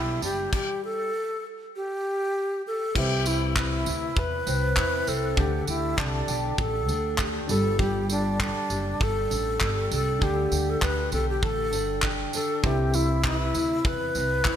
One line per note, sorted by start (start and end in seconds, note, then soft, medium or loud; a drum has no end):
0.00 0.17 B1 loud
0.00 1.09 G3 medium
0.00 0.48 B3 medium
0.00 0.21 D4 medium
0.00 0.48 D4 medium
0.00 0.21 E4 medium
0.00 1.09 G4 medium
0.00 1.09 B4 medium
0.00 0.50 D5 medium
0.21 0.47 F#1 medium
0.21 0.59 D4 medium
0.21 0.51 G4 loud
0.21 tambourine medium
0.53 0.81 G4 medium
0.53 kick loud
0.53 crash medium
0.84 1.44 A4 loud
1.76 2.62 G4 medium
2.67 2.94 A4 medium
2.95 3.82 C2 loud
2.95 5.38 C3 medium
2.95 5.33 C4 medium
2.95 5.34 E4 medium
2.95 3.29 G4 medium
2.95 5.34 G4 medium
2.95 5.35 B4 medium
2.95 5.35 E5 medium
2.95 kick loud
2.95 crash medium
3.26 3.85 E4 medium
3.26 3.56 E4 medium
3.26 tambourine medium
3.56 4.20 E4 medium
3.56 4.15 B4 medium
3.56 kick loud
3.56 clap loud
3.86 4.11 D2 medium
3.86 4.75 E4 medium
3.86 tambourine medium
4.16 4.41 E2 medium
4.16 5.44 B4 medium
4.16 5.10 B4 medium
4.16 kick loud
4.47 4.71 C2 loud
4.47 5.06 C4 medium
4.47 tambourine medium
4.77 5.02 E2 medium
4.77 5.44 E4 medium
4.77 kick loud
4.77 clap loud
5.07 5.32 C2 medium
5.07 5.44 C4 medium
5.07 5.40 A4 medium
5.07 tambourine medium
5.36 5.62 D2 loud
5.36 8.87 D3 medium
5.36 7.45 D4 medium
5.36 7.46 G4 medium
5.36 5.68 G4 medium
5.36 kick loud
5.40 7.47 A4 medium
5.67 5.93 D2 loud
5.67 5.99 E4 medium
5.67 6.28 G4 medium
5.67 tambourine medium
5.97 6.23 C2 medium
5.97 6.60 D4 medium
5.97 6.58 A4 medium
5.97 kick loud
5.97 clap loud
6.28 6.53 B1 medium
6.28 7.18 G4 medium
6.28 tambourine medium
6.58 6.88 A1 medium
6.58 7.83 A4 medium
6.58 7.23 A4 medium
6.58 kick loud
6.88 7.38 D2 medium
6.88 9.30 D4 medium
6.88 tambourine medium
7.18 8.09 G4 medium
7.18 kick medium
7.18 clap loud
7.48 8.49 G1 loud
7.48 7.79 G3 medium
7.48 9.87 D4 medium
7.48 9.88 G4 medium
7.48 7.81 A4 medium
7.48 9.89 A4 medium
7.48 tambourine medium
7.79 10.85 G3 medium
7.79 8.10 G4 medium
7.79 kick loud
8.09 8.39 D4 medium
8.09 8.70 G4 medium
8.09 tambourine medium
8.40 9.04 D4 loud
8.40 9.00 A4 medium
8.40 kick loud
8.40 clap loud
8.70 8.95 F#1 medium
8.70 9.60 G4 medium
8.70 tambourine medium
9.00 9.26 G1 medium
9.00 10.54 A4 medium
9.00 9.93 A4 loud
9.00 kick loud
9.30 9.56 A1 medium
9.30 9.91 D4 medium
9.30 tambourine medium
9.60 9.86 G1 medium
9.60 10.51 G4 medium
9.60 kick loud
9.60 clap loud
9.91 10.16 C2 medium
9.91 11.73 D4 medium
9.91 10.25 A4 loud
9.91 tambourine medium
10.19 10.47 D2 medium
10.19 12.64 D3 medium
10.19 12.59 D4 medium
10.19 12.60 G4 medium
10.19 kick loud
10.23 10.71 G4 medium
10.23 12.61 A4 medium
10.51 10.77 D2 medium
10.51 11.12 G4 medium
10.51 tambourine medium
10.70 10.85 A4 medium
10.82 11.07 D2 medium
10.82 11.42 A4 medium
10.82 11.12 B4 loud
10.82 kick loud
10.82 clap loud
11.12 11.43 B1 loud
11.12 12.03 G4 medium
11.12 11.28 A4 loud
11.12 tambourine medium
11.29 11.45 G4 medium
11.43 11.73 A1 medium
11.43 12.71 A4 medium
11.43 12.07 A4 loud
11.43 kick loud
11.73 12.23 G1 medium
11.73 12.33 D4 medium
11.73 tambourine medium
12.02 12.93 G4 medium
12.02 kick loud
12.02 clap loud
12.33 12.71 D4 medium
12.33 12.65 A4 medium
12.33 tambourine medium
12.63 13.51 C2 loud
12.63 14.56 C3 medium
12.63 14.56 C4 medium
12.63 14.56 E4 medium
12.63 12.96 G4 medium
12.63 14.56 G4 medium
12.63 14.56 B4 medium
12.63 14.56 E5 medium
12.63 kick loud
12.94 13.53 E4 medium
12.94 13.25 E4 medium
12.94 tambourine medium
13.24 13.88 E4 loud
13.24 13.85 B4 medium
13.24 kick loud
13.24 clap loud
13.54 13.79 D2 medium
13.54 14.44 E4 medium
13.54 tambourine medium
13.85 14.10 E2 medium
13.85 14.56 B4 medium
13.85 14.56 B4 loud
13.85 kick loud
14.15 14.40 C2 medium
14.15 14.56 C4 medium
14.15 tambourine medium
14.45 14.56 E2 medium
14.45 14.56 E4 medium
14.45 kick loud
14.45 clap loud